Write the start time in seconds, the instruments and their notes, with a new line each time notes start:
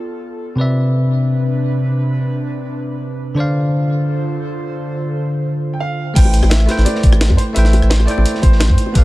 Already playing: tine electric piano B3 F4 A4 D5 G5, analog synth pad F4 A4
0.56 tine electric piano C3 C4 B4, analog synth pad C3 D4 B4
0.60 tine electric piano D5 E5
3.35 tine electric piano D3 D4 C5, analog synth pad D3 F4 A4 C5
3.39 tine electric piano D5 F5
5.73 grand piano G5
5.80 grand piano F5
6.14 sub bass A1, tine electric piano A3 E4 B4, grand piano G5, kick, closed hi-hat, crash
6.18 tine electric piano C5 G5
6.25 high bongo
6.33 closed hi-hat
6.43 sub bass A1, cross-stick, high bongo
6.50 grand piano E5, snare, closed hi-hat
6.60 cross-stick
6.66 tine electric piano A3 E4 B4, snare, closed hi-hat, high bongo
6.70 tine electric piano C5 G5
6.78 sub bass A1, snare
6.85 grand piano D5, closed hi-hat, high bongo
6.95 snare
7.03 sub bass A1, kick, closed hi-hat
7.13 cross-stick, high bongo
7.21 snare, closed hi-hat
7.30 sub bass A2, kick, high bongo
7.37 grand piano C5, closed hi-hat
7.53 sub bass A1, tine electric piano A3 E4 B4, grand piano E5, closed hi-hat, high bongo
7.57 tine electric piano C5 G5
7.65 snare
7.73 closed hi-hat, high bongo
7.82 sub bass A1, cross-stick
7.89 grand piano C5, snare, closed hi-hat
8.00 cross-stick, high bongo
8.05 tine electric piano A3 E4 A4, grand piano D5, closed hi-hat
8.10 tine electric piano C5 G5
8.17 sub bass A1, high bongo
8.25 closed hi-hat
8.35 snare
8.42 sub bass A1, grand piano C5, kick, closed hi-hat, high bongo
8.52 snare
8.60 snare, closed hi-hat, high bongo
8.69 sub bass A2, kick
8.78 closed hi-hat
8.86 high bongo
8.93 sub bass B1, tine electric piano B3 G4 A4, grand piano B4, kick, closed hi-hat
8.97 tine electric piano D5 F5